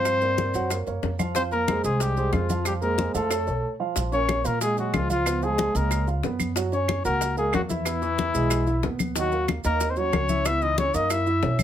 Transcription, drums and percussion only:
0.05 high bongo, high conga, claves, maracas
0.21 high bongo, high conga, maracas
0.38 high bongo, high conga, maracas
0.54 high conga, maracas
0.70 high bongo, high conga, claves, maracas
0.87 high bongo, high conga, maracas
1.03 high bongo, low bongo, high conga, maracas
1.19 high bongo, high conga, claves, maracas
1.35 high bongo, high conga, maracas
1.51 high bongo, high conga, maracas
1.68 high bongo, high conga, claves, maracas
1.84 high bongo, high conga, maracas
2.00 high bongo, high conga, maracas
2.17 high bongo, high conga, maracas
2.33 high bongo, low bongo, high conga, claves, maracas
2.49 high conga, maracas
2.65 high bongo, high conga, claves, maracas
2.82 high bongo, high conga, maracas
2.98 high bongo, high conga, maracas
3.15 high conga, maracas
3.31 high bongo, high conga, claves, maracas
3.47 high bongo, high conga, maracas
3.96 high bongo, high conga, maracas
4.12 high bongo, high conga, maracas
4.29 high bongo, high conga, claves, maracas
4.45 high bongo, high conga, maracas
4.61 high bongo, high conga, maracas
4.77 high bongo, high conga, maracas
4.94 high bongo, low bongo, high conga, claves, maracas
5.10 high conga, maracas
5.26 high bongo, high conga, claves, maracas
5.42 high bongo, high conga, maracas
5.58 high bongo, high conga, maracas
5.75 high conga, maracas
5.91 high bongo, high conga, claves, maracas
6.07 high bongo, high conga, maracas
6.23 high bongo, low bongo, high conga, maracas
6.39 high bongo, high conga, claves, maracas
6.56 high bongo, high conga, maracas
6.72 high bongo, high conga, maracas
6.88 high bongo, high conga, claves, maracas
7.05 high bongo, high conga, maracas
7.21 high bongo, high conga, maracas
7.37 high bongo, high conga, maracas
7.53 high bongo, low bongo, high conga, claves, maracas
7.70 high conga, maracas
7.85 high bongo, high conga, claves, maracas
8.02 high bongo, high conga, maracas
8.18 high bongo, high conga, maracas
8.35 high conga, maracas
8.50 high bongo, high conga, claves, maracas
8.67 high bongo, high conga, maracas
8.83 high bongo, low bongo, high conga, maracas
8.99 high bongo, high conga, claves, maracas
9.16 high bongo, high conga, maracas
9.32 high bongo, high conga, maracas
9.48 high bongo, high conga, claves, maracas
9.64 high bongo, high conga, maracas
9.80 high bongo, high conga, maracas
9.96 high bongo, high conga, maracas
10.13 high bongo, low bongo, high conga, claves, maracas
10.29 high conga, maracas
10.45 high bongo, high conga, claves, maracas
10.62 high bongo, high conga, maracas
10.78 high bongo, high conga, maracas
10.94 high conga, maracas
11.10 high bongo, high conga, claves, maracas
11.27 high bongo, high conga, maracas
11.42 high bongo, low bongo, high conga, maracas
11.59 high bongo, high conga, claves, maracas

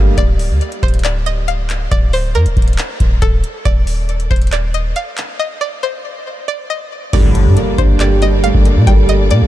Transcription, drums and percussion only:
0.18 kick, closed hi-hat
0.39 open hi-hat
0.61 closed hi-hat
0.72 closed hi-hat
0.83 kick, closed hi-hat
0.88 closed hi-hat
0.94 closed hi-hat
0.99 closed hi-hat
1.05 clap, closed hi-hat
1.26 closed hi-hat
1.48 closed hi-hat
1.70 clap, closed hi-hat
1.92 kick, closed hi-hat
2.13 open hi-hat
2.35 closed hi-hat
2.46 closed hi-hat
2.57 kick, closed hi-hat
2.62 closed hi-hat
2.68 closed hi-hat
2.73 closed hi-hat
2.78 clap, closed hi-hat
3.00 kick, closed hi-hat
3.22 kick, closed hi-hat
3.44 closed hi-hat
3.65 kick, closed hi-hat
3.87 open hi-hat
4.09 closed hi-hat
4.20 closed hi-hat
4.31 kick, closed hi-hat
4.36 closed hi-hat
4.42 closed hi-hat
4.47 closed hi-hat
4.52 clap, closed hi-hat
4.74 closed hi-hat
4.96 closed hi-hat
5.18 clap, closed hi-hat
7.13 kick, closed hi-hat, crash
7.35 closed hi-hat
7.57 closed hi-hat
7.78 kick, closed hi-hat
8.00 clap, closed hi-hat
8.22 closed hi-hat
8.44 closed hi-hat
8.55 kick
8.65 closed hi-hat
8.87 kick, closed hi-hat
9.09 closed hi-hat
9.31 closed hi-hat

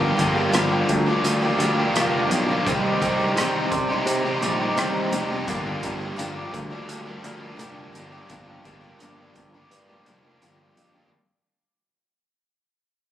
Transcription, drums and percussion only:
0.19 kick, closed hi-hat
0.54 cross-stick, closed hi-hat
0.89 kick, closed hi-hat
1.24 closed hi-hat
1.60 closed hi-hat
1.96 cross-stick, closed hi-hat
2.31 closed hi-hat
2.67 kick, closed hi-hat
3.02 kick, closed hi-hat
3.37 cross-stick, closed hi-hat
3.72 kick, closed hi-hat
4.07 closed hi-hat
4.42 closed hi-hat
4.78 cross-stick, closed hi-hat
5.13 closed hi-hat
5.48 kick, closed hi-hat
5.83 kick, closed hi-hat
6.19 closed hi-hat
6.54 kick, closed hi-hat
6.89 closed hi-hat
7.24 closed hi-hat
7.59 closed hi-hat
7.95 closed hi-hat
8.30 kick, closed hi-hat
8.65 kick, closed hi-hat
9.00 closed hi-hat
9.36 kick, closed hi-hat
9.71 closed hi-hat
10.06 closed hi-hat
10.42 closed hi-hat
10.77 closed hi-hat

